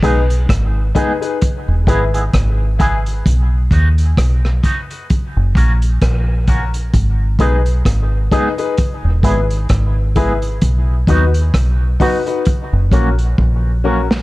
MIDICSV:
0, 0, Header, 1, 5, 480
1, 0, Start_track
1, 0, Key_signature, 5, "minor"
1, 0, Tempo, 920245
1, 1698, Time_signature, 4, 2, 24, 8
1, 7419, End_track
2, 0, Start_track
2, 0, Title_t, "Upright piano"
2, 0, Program_c, 0, 0
2, 14, Note_on_c, 0, 63, 84
2, 16, Note_on_c, 0, 68, 80
2, 20, Note_on_c, 0, 71, 99
2, 116, Note_off_c, 0, 63, 0
2, 118, Note_off_c, 0, 68, 0
2, 120, Note_off_c, 0, 71, 0
2, 494, Note_on_c, 0, 63, 103
2, 498, Note_on_c, 0, 68, 89
2, 501, Note_on_c, 0, 71, 100
2, 597, Note_off_c, 0, 63, 0
2, 599, Note_off_c, 0, 68, 0
2, 600, Note_off_c, 0, 71, 0
2, 630, Note_on_c, 0, 63, 75
2, 633, Note_on_c, 0, 68, 70
2, 636, Note_on_c, 0, 71, 88
2, 708, Note_off_c, 0, 63, 0
2, 710, Note_off_c, 0, 68, 0
2, 711, Note_off_c, 0, 71, 0
2, 975, Note_on_c, 0, 64, 84
2, 978, Note_on_c, 0, 68, 69
2, 981, Note_on_c, 0, 71, 85
2, 1077, Note_off_c, 0, 64, 0
2, 1079, Note_off_c, 0, 68, 0
2, 1080, Note_off_c, 0, 71, 0
2, 1454, Note_on_c, 0, 64, 93
2, 1456, Note_on_c, 0, 68, 93
2, 1460, Note_on_c, 0, 71, 95
2, 1557, Note_off_c, 0, 64, 0
2, 1558, Note_off_c, 0, 68, 0
2, 1560, Note_off_c, 0, 71, 0
2, 1936, Note_on_c, 0, 63, 80
2, 1939, Note_on_c, 0, 66, 84
2, 1942, Note_on_c, 0, 71, 94
2, 2038, Note_off_c, 0, 63, 0
2, 2040, Note_off_c, 0, 66, 0
2, 2041, Note_off_c, 0, 71, 0
2, 2415, Note_on_c, 0, 63, 91
2, 2419, Note_on_c, 0, 66, 81
2, 2421, Note_on_c, 0, 71, 101
2, 2517, Note_off_c, 0, 63, 0
2, 2519, Note_off_c, 0, 66, 0
2, 2521, Note_off_c, 0, 71, 0
2, 2555, Note_on_c, 0, 63, 78
2, 2557, Note_on_c, 0, 66, 68
2, 2560, Note_on_c, 0, 71, 82
2, 2631, Note_off_c, 0, 63, 0
2, 2632, Note_off_c, 0, 66, 0
2, 2634, Note_off_c, 0, 71, 0
2, 2899, Note_on_c, 0, 61, 85
2, 2902, Note_on_c, 0, 66, 72
2, 2905, Note_on_c, 0, 70, 96
2, 3000, Note_off_c, 0, 61, 0
2, 3001, Note_off_c, 0, 66, 0
2, 3003, Note_off_c, 0, 70, 0
2, 3377, Note_on_c, 0, 61, 90
2, 3380, Note_on_c, 0, 66, 93
2, 3384, Note_on_c, 0, 70, 102
2, 3479, Note_off_c, 0, 61, 0
2, 3480, Note_off_c, 0, 66, 0
2, 3482, Note_off_c, 0, 70, 0
2, 3858, Note_on_c, 0, 63, 83
2, 3861, Note_on_c, 0, 68, 90
2, 3865, Note_on_c, 0, 71, 102
2, 3959, Note_off_c, 0, 63, 0
2, 3961, Note_off_c, 0, 68, 0
2, 3963, Note_off_c, 0, 71, 0
2, 4339, Note_on_c, 0, 63, 101
2, 4341, Note_on_c, 0, 68, 90
2, 4345, Note_on_c, 0, 71, 92
2, 4440, Note_off_c, 0, 63, 0
2, 4441, Note_off_c, 0, 68, 0
2, 4443, Note_off_c, 0, 71, 0
2, 4476, Note_on_c, 0, 63, 85
2, 4480, Note_on_c, 0, 68, 72
2, 4483, Note_on_c, 0, 71, 96
2, 4552, Note_off_c, 0, 63, 0
2, 4554, Note_off_c, 0, 68, 0
2, 4555, Note_off_c, 0, 71, 0
2, 4818, Note_on_c, 0, 64, 68
2, 4821, Note_on_c, 0, 68, 68
2, 4825, Note_on_c, 0, 71, 82
2, 4920, Note_off_c, 0, 64, 0
2, 4921, Note_off_c, 0, 68, 0
2, 4923, Note_off_c, 0, 71, 0
2, 5299, Note_on_c, 0, 64, 103
2, 5302, Note_on_c, 0, 68, 86
2, 5305, Note_on_c, 0, 71, 103
2, 5400, Note_off_c, 0, 64, 0
2, 5402, Note_off_c, 0, 68, 0
2, 5403, Note_off_c, 0, 71, 0
2, 5778, Note_on_c, 0, 63, 88
2, 5782, Note_on_c, 0, 66, 80
2, 5784, Note_on_c, 0, 71, 99
2, 5880, Note_off_c, 0, 63, 0
2, 5882, Note_off_c, 0, 66, 0
2, 5883, Note_off_c, 0, 71, 0
2, 6258, Note_on_c, 0, 63, 93
2, 6262, Note_on_c, 0, 66, 91
2, 6265, Note_on_c, 0, 71, 108
2, 6360, Note_off_c, 0, 63, 0
2, 6362, Note_off_c, 0, 66, 0
2, 6364, Note_off_c, 0, 71, 0
2, 6397, Note_on_c, 0, 63, 73
2, 6400, Note_on_c, 0, 66, 76
2, 6403, Note_on_c, 0, 71, 86
2, 6473, Note_off_c, 0, 63, 0
2, 6475, Note_off_c, 0, 66, 0
2, 6476, Note_off_c, 0, 71, 0
2, 6739, Note_on_c, 0, 61, 80
2, 6742, Note_on_c, 0, 66, 67
2, 6745, Note_on_c, 0, 70, 81
2, 6841, Note_off_c, 0, 61, 0
2, 6843, Note_off_c, 0, 66, 0
2, 6844, Note_off_c, 0, 70, 0
2, 7219, Note_on_c, 0, 61, 91
2, 7222, Note_on_c, 0, 66, 84
2, 7225, Note_on_c, 0, 70, 101
2, 7321, Note_off_c, 0, 61, 0
2, 7323, Note_off_c, 0, 66, 0
2, 7324, Note_off_c, 0, 70, 0
2, 7419, End_track
3, 0, Start_track
3, 0, Title_t, "Clean electric guitar"
3, 0, Program_c, 1, 27
3, 15, Note_on_c, 1, 56, 75
3, 19, Note_on_c, 1, 59, 80
3, 20, Note_on_c, 1, 63, 78
3, 23, Note_on_c, 1, 68, 94
3, 98, Note_off_c, 1, 56, 0
3, 100, Note_off_c, 1, 59, 0
3, 100, Note_off_c, 1, 63, 0
3, 102, Note_off_c, 1, 68, 0
3, 499, Note_on_c, 1, 56, 94
3, 501, Note_on_c, 1, 59, 84
3, 502, Note_on_c, 1, 63, 84
3, 505, Note_on_c, 1, 68, 98
3, 580, Note_off_c, 1, 56, 0
3, 581, Note_off_c, 1, 59, 0
3, 582, Note_off_c, 1, 63, 0
3, 583, Note_off_c, 1, 68, 0
3, 979, Note_on_c, 1, 56, 72
3, 980, Note_on_c, 1, 59, 87
3, 982, Note_on_c, 1, 64, 88
3, 985, Note_on_c, 1, 68, 82
3, 1060, Note_off_c, 1, 56, 0
3, 1061, Note_off_c, 1, 59, 0
3, 1062, Note_off_c, 1, 64, 0
3, 1063, Note_off_c, 1, 68, 0
3, 1117, Note_on_c, 1, 68, 56
3, 1120, Note_on_c, 1, 64, 55
3, 1123, Note_on_c, 1, 59, 53
3, 1124, Note_on_c, 1, 56, 43
3, 1164, Note_off_c, 1, 68, 0
3, 1166, Note_off_c, 1, 64, 0
3, 1167, Note_off_c, 1, 56, 0
3, 1167, Note_off_c, 1, 59, 0
3, 1458, Note_on_c, 1, 56, 67
3, 1460, Note_on_c, 1, 59, 82
3, 1462, Note_on_c, 1, 64, 88
3, 1465, Note_on_c, 1, 68, 90
3, 1540, Note_off_c, 1, 56, 0
3, 1541, Note_off_c, 1, 59, 0
3, 1542, Note_off_c, 1, 64, 0
3, 1543, Note_off_c, 1, 68, 0
3, 1938, Note_on_c, 1, 54, 81
3, 1941, Note_on_c, 1, 59, 87
3, 1943, Note_on_c, 1, 63, 81
3, 1945, Note_on_c, 1, 66, 97
3, 2020, Note_off_c, 1, 54, 0
3, 2021, Note_off_c, 1, 59, 0
3, 2022, Note_off_c, 1, 63, 0
3, 2023, Note_off_c, 1, 66, 0
3, 2417, Note_on_c, 1, 54, 71
3, 2421, Note_on_c, 1, 59, 87
3, 2422, Note_on_c, 1, 63, 85
3, 2424, Note_on_c, 1, 66, 96
3, 2499, Note_off_c, 1, 54, 0
3, 2501, Note_off_c, 1, 59, 0
3, 2502, Note_off_c, 1, 63, 0
3, 2503, Note_off_c, 1, 66, 0
3, 2898, Note_on_c, 1, 54, 81
3, 2900, Note_on_c, 1, 58, 84
3, 2903, Note_on_c, 1, 61, 92
3, 2904, Note_on_c, 1, 66, 88
3, 2980, Note_off_c, 1, 54, 0
3, 2981, Note_off_c, 1, 58, 0
3, 2982, Note_off_c, 1, 61, 0
3, 2983, Note_off_c, 1, 66, 0
3, 3380, Note_on_c, 1, 54, 75
3, 3383, Note_on_c, 1, 58, 69
3, 3384, Note_on_c, 1, 61, 73
3, 3386, Note_on_c, 1, 66, 77
3, 3461, Note_off_c, 1, 54, 0
3, 3462, Note_off_c, 1, 58, 0
3, 3463, Note_off_c, 1, 61, 0
3, 3464, Note_off_c, 1, 66, 0
3, 3858, Note_on_c, 1, 56, 82
3, 3861, Note_on_c, 1, 59, 86
3, 3862, Note_on_c, 1, 63, 89
3, 3863, Note_on_c, 1, 68, 87
3, 3940, Note_off_c, 1, 56, 0
3, 3941, Note_off_c, 1, 59, 0
3, 3942, Note_off_c, 1, 63, 0
3, 3942, Note_off_c, 1, 68, 0
3, 4336, Note_on_c, 1, 56, 88
3, 4340, Note_on_c, 1, 59, 81
3, 4342, Note_on_c, 1, 63, 78
3, 4343, Note_on_c, 1, 68, 89
3, 4419, Note_off_c, 1, 56, 0
3, 4421, Note_off_c, 1, 59, 0
3, 4422, Note_off_c, 1, 63, 0
3, 4423, Note_off_c, 1, 68, 0
3, 4817, Note_on_c, 1, 56, 80
3, 4820, Note_on_c, 1, 59, 76
3, 4821, Note_on_c, 1, 64, 82
3, 4824, Note_on_c, 1, 68, 84
3, 4900, Note_off_c, 1, 56, 0
3, 4901, Note_off_c, 1, 59, 0
3, 4902, Note_off_c, 1, 64, 0
3, 4903, Note_off_c, 1, 68, 0
3, 5297, Note_on_c, 1, 56, 81
3, 5300, Note_on_c, 1, 59, 74
3, 5304, Note_on_c, 1, 64, 84
3, 5306, Note_on_c, 1, 68, 93
3, 5380, Note_off_c, 1, 56, 0
3, 5382, Note_off_c, 1, 59, 0
3, 5383, Note_off_c, 1, 64, 0
3, 5384, Note_off_c, 1, 68, 0
3, 5781, Note_on_c, 1, 54, 76
3, 5783, Note_on_c, 1, 59, 81
3, 5786, Note_on_c, 1, 63, 84
3, 5788, Note_on_c, 1, 66, 80
3, 5862, Note_off_c, 1, 54, 0
3, 5863, Note_off_c, 1, 59, 0
3, 5865, Note_off_c, 1, 63, 0
3, 5866, Note_off_c, 1, 66, 0
3, 6263, Note_on_c, 1, 54, 69
3, 6264, Note_on_c, 1, 59, 71
3, 6267, Note_on_c, 1, 63, 79
3, 6268, Note_on_c, 1, 66, 95
3, 6343, Note_off_c, 1, 54, 0
3, 6344, Note_off_c, 1, 59, 0
3, 6345, Note_off_c, 1, 63, 0
3, 6346, Note_off_c, 1, 66, 0
3, 6741, Note_on_c, 1, 54, 73
3, 6744, Note_on_c, 1, 58, 81
3, 6746, Note_on_c, 1, 61, 75
3, 6747, Note_on_c, 1, 66, 78
3, 6823, Note_off_c, 1, 54, 0
3, 6824, Note_off_c, 1, 58, 0
3, 6825, Note_off_c, 1, 61, 0
3, 6826, Note_off_c, 1, 66, 0
3, 7220, Note_on_c, 1, 54, 69
3, 7223, Note_on_c, 1, 58, 78
3, 7225, Note_on_c, 1, 61, 79
3, 7227, Note_on_c, 1, 66, 82
3, 7303, Note_off_c, 1, 54, 0
3, 7304, Note_off_c, 1, 58, 0
3, 7305, Note_off_c, 1, 61, 0
3, 7306, Note_off_c, 1, 66, 0
3, 7419, End_track
4, 0, Start_track
4, 0, Title_t, "Fingered electric bass"
4, 0, Program_c, 2, 33
4, 13, Note_on_c, 2, 35, 85
4, 235, Note_off_c, 2, 35, 0
4, 258, Note_on_c, 2, 32, 78
4, 477, Note_off_c, 2, 32, 0
4, 877, Note_on_c, 2, 28, 85
4, 977, Note_off_c, 2, 28, 0
4, 977, Note_on_c, 2, 32, 89
4, 1196, Note_off_c, 2, 32, 0
4, 1218, Note_on_c, 2, 32, 94
4, 1677, Note_off_c, 2, 32, 0
4, 1700, Note_on_c, 2, 35, 83
4, 1918, Note_off_c, 2, 35, 0
4, 1937, Note_on_c, 2, 39, 89
4, 2157, Note_off_c, 2, 39, 0
4, 2178, Note_on_c, 2, 35, 93
4, 2397, Note_off_c, 2, 35, 0
4, 2799, Note_on_c, 2, 30, 84
4, 2890, Note_off_c, 2, 30, 0
4, 2896, Note_on_c, 2, 34, 90
4, 3117, Note_off_c, 2, 34, 0
4, 3140, Note_on_c, 2, 34, 90
4, 3598, Note_off_c, 2, 34, 0
4, 3619, Note_on_c, 2, 32, 97
4, 3838, Note_off_c, 2, 32, 0
4, 3855, Note_on_c, 2, 35, 99
4, 4076, Note_off_c, 2, 35, 0
4, 4098, Note_on_c, 2, 32, 96
4, 4318, Note_off_c, 2, 32, 0
4, 4718, Note_on_c, 2, 28, 85
4, 4817, Note_off_c, 2, 28, 0
4, 4817, Note_on_c, 2, 32, 85
4, 5037, Note_off_c, 2, 32, 0
4, 5060, Note_on_c, 2, 32, 100
4, 5519, Note_off_c, 2, 32, 0
4, 5539, Note_on_c, 2, 35, 97
4, 5759, Note_off_c, 2, 35, 0
4, 5777, Note_on_c, 2, 39, 84
4, 5998, Note_off_c, 2, 39, 0
4, 6019, Note_on_c, 2, 35, 76
4, 6239, Note_off_c, 2, 35, 0
4, 6639, Note_on_c, 2, 30, 92
4, 6732, Note_off_c, 2, 30, 0
4, 6739, Note_on_c, 2, 34, 84
4, 6959, Note_off_c, 2, 34, 0
4, 6981, Note_on_c, 2, 34, 85
4, 7419, Note_off_c, 2, 34, 0
4, 7419, End_track
5, 0, Start_track
5, 0, Title_t, "Drums"
5, 13, Note_on_c, 9, 36, 102
5, 18, Note_on_c, 9, 42, 73
5, 66, Note_off_c, 9, 36, 0
5, 70, Note_off_c, 9, 42, 0
5, 157, Note_on_c, 9, 42, 52
5, 209, Note_off_c, 9, 42, 0
5, 256, Note_on_c, 9, 36, 117
5, 260, Note_on_c, 9, 37, 114
5, 260, Note_on_c, 9, 42, 112
5, 308, Note_off_c, 9, 36, 0
5, 312, Note_off_c, 9, 37, 0
5, 312, Note_off_c, 9, 42, 0
5, 497, Note_on_c, 9, 36, 91
5, 498, Note_on_c, 9, 42, 68
5, 549, Note_off_c, 9, 36, 0
5, 550, Note_off_c, 9, 42, 0
5, 638, Note_on_c, 9, 42, 53
5, 690, Note_off_c, 9, 42, 0
5, 738, Note_on_c, 9, 42, 84
5, 742, Note_on_c, 9, 36, 114
5, 790, Note_off_c, 9, 42, 0
5, 794, Note_off_c, 9, 36, 0
5, 975, Note_on_c, 9, 36, 90
5, 981, Note_on_c, 9, 42, 87
5, 1027, Note_off_c, 9, 36, 0
5, 1034, Note_off_c, 9, 42, 0
5, 1117, Note_on_c, 9, 42, 52
5, 1169, Note_off_c, 9, 42, 0
5, 1217, Note_on_c, 9, 42, 88
5, 1218, Note_on_c, 9, 36, 104
5, 1221, Note_on_c, 9, 37, 98
5, 1270, Note_off_c, 9, 36, 0
5, 1270, Note_off_c, 9, 42, 0
5, 1273, Note_off_c, 9, 37, 0
5, 1459, Note_on_c, 9, 36, 95
5, 1459, Note_on_c, 9, 42, 77
5, 1511, Note_off_c, 9, 36, 0
5, 1512, Note_off_c, 9, 42, 0
5, 1598, Note_on_c, 9, 42, 53
5, 1650, Note_off_c, 9, 42, 0
5, 1699, Note_on_c, 9, 36, 126
5, 1701, Note_on_c, 9, 42, 103
5, 1751, Note_off_c, 9, 36, 0
5, 1753, Note_off_c, 9, 42, 0
5, 1934, Note_on_c, 9, 36, 89
5, 1939, Note_on_c, 9, 42, 74
5, 1987, Note_off_c, 9, 36, 0
5, 1991, Note_off_c, 9, 42, 0
5, 2076, Note_on_c, 9, 42, 55
5, 2129, Note_off_c, 9, 42, 0
5, 2177, Note_on_c, 9, 36, 124
5, 2181, Note_on_c, 9, 37, 119
5, 2181, Note_on_c, 9, 42, 102
5, 2229, Note_off_c, 9, 36, 0
5, 2233, Note_off_c, 9, 37, 0
5, 2233, Note_off_c, 9, 42, 0
5, 2321, Note_on_c, 9, 37, 65
5, 2373, Note_off_c, 9, 37, 0
5, 2418, Note_on_c, 9, 36, 89
5, 2420, Note_on_c, 9, 42, 58
5, 2470, Note_off_c, 9, 36, 0
5, 2472, Note_off_c, 9, 42, 0
5, 2559, Note_on_c, 9, 42, 48
5, 2611, Note_off_c, 9, 42, 0
5, 2659, Note_on_c, 9, 42, 78
5, 2662, Note_on_c, 9, 36, 116
5, 2712, Note_off_c, 9, 42, 0
5, 2715, Note_off_c, 9, 36, 0
5, 2896, Note_on_c, 9, 36, 88
5, 2903, Note_on_c, 9, 42, 83
5, 2948, Note_off_c, 9, 36, 0
5, 2956, Note_off_c, 9, 42, 0
5, 3036, Note_on_c, 9, 42, 53
5, 3088, Note_off_c, 9, 42, 0
5, 3137, Note_on_c, 9, 42, 77
5, 3138, Note_on_c, 9, 36, 98
5, 3141, Note_on_c, 9, 37, 100
5, 3190, Note_off_c, 9, 36, 0
5, 3190, Note_off_c, 9, 42, 0
5, 3193, Note_off_c, 9, 37, 0
5, 3377, Note_on_c, 9, 42, 70
5, 3378, Note_on_c, 9, 36, 87
5, 3430, Note_off_c, 9, 42, 0
5, 3431, Note_off_c, 9, 36, 0
5, 3515, Note_on_c, 9, 42, 53
5, 3567, Note_off_c, 9, 42, 0
5, 3618, Note_on_c, 9, 36, 120
5, 3618, Note_on_c, 9, 42, 93
5, 3670, Note_off_c, 9, 36, 0
5, 3670, Note_off_c, 9, 42, 0
5, 3854, Note_on_c, 9, 36, 97
5, 3857, Note_on_c, 9, 42, 74
5, 3906, Note_off_c, 9, 36, 0
5, 3910, Note_off_c, 9, 42, 0
5, 3994, Note_on_c, 9, 42, 48
5, 4046, Note_off_c, 9, 42, 0
5, 4096, Note_on_c, 9, 36, 110
5, 4100, Note_on_c, 9, 37, 104
5, 4100, Note_on_c, 9, 42, 107
5, 4148, Note_off_c, 9, 36, 0
5, 4152, Note_off_c, 9, 37, 0
5, 4152, Note_off_c, 9, 42, 0
5, 4337, Note_on_c, 9, 36, 80
5, 4339, Note_on_c, 9, 42, 61
5, 4390, Note_off_c, 9, 36, 0
5, 4391, Note_off_c, 9, 42, 0
5, 4476, Note_on_c, 9, 42, 52
5, 4529, Note_off_c, 9, 42, 0
5, 4577, Note_on_c, 9, 42, 76
5, 4582, Note_on_c, 9, 36, 114
5, 4629, Note_off_c, 9, 42, 0
5, 4634, Note_off_c, 9, 36, 0
5, 4815, Note_on_c, 9, 36, 95
5, 4820, Note_on_c, 9, 42, 87
5, 4867, Note_off_c, 9, 36, 0
5, 4872, Note_off_c, 9, 42, 0
5, 4957, Note_on_c, 9, 42, 48
5, 5009, Note_off_c, 9, 42, 0
5, 5055, Note_on_c, 9, 42, 80
5, 5058, Note_on_c, 9, 36, 107
5, 5059, Note_on_c, 9, 37, 94
5, 5107, Note_off_c, 9, 42, 0
5, 5110, Note_off_c, 9, 36, 0
5, 5111, Note_off_c, 9, 37, 0
5, 5298, Note_on_c, 9, 42, 71
5, 5299, Note_on_c, 9, 36, 98
5, 5350, Note_off_c, 9, 42, 0
5, 5352, Note_off_c, 9, 36, 0
5, 5435, Note_on_c, 9, 42, 53
5, 5487, Note_off_c, 9, 42, 0
5, 5537, Note_on_c, 9, 42, 96
5, 5539, Note_on_c, 9, 36, 113
5, 5589, Note_off_c, 9, 42, 0
5, 5591, Note_off_c, 9, 36, 0
5, 5776, Note_on_c, 9, 36, 99
5, 5779, Note_on_c, 9, 42, 66
5, 5828, Note_off_c, 9, 36, 0
5, 5832, Note_off_c, 9, 42, 0
5, 5916, Note_on_c, 9, 42, 53
5, 5968, Note_off_c, 9, 42, 0
5, 6018, Note_on_c, 9, 36, 115
5, 6021, Note_on_c, 9, 37, 98
5, 6021, Note_on_c, 9, 42, 94
5, 6071, Note_off_c, 9, 36, 0
5, 6073, Note_off_c, 9, 37, 0
5, 6073, Note_off_c, 9, 42, 0
5, 6259, Note_on_c, 9, 36, 87
5, 6261, Note_on_c, 9, 46, 65
5, 6312, Note_off_c, 9, 36, 0
5, 6313, Note_off_c, 9, 46, 0
5, 6398, Note_on_c, 9, 42, 51
5, 6450, Note_off_c, 9, 42, 0
5, 6495, Note_on_c, 9, 42, 81
5, 6503, Note_on_c, 9, 36, 117
5, 6548, Note_off_c, 9, 42, 0
5, 6555, Note_off_c, 9, 36, 0
5, 6737, Note_on_c, 9, 36, 93
5, 6740, Note_on_c, 9, 42, 84
5, 6789, Note_off_c, 9, 36, 0
5, 6792, Note_off_c, 9, 42, 0
5, 6877, Note_on_c, 9, 42, 52
5, 6930, Note_off_c, 9, 42, 0
5, 6980, Note_on_c, 9, 36, 100
5, 7032, Note_off_c, 9, 36, 0
5, 7359, Note_on_c, 9, 38, 91
5, 7411, Note_off_c, 9, 38, 0
5, 7419, End_track
0, 0, End_of_file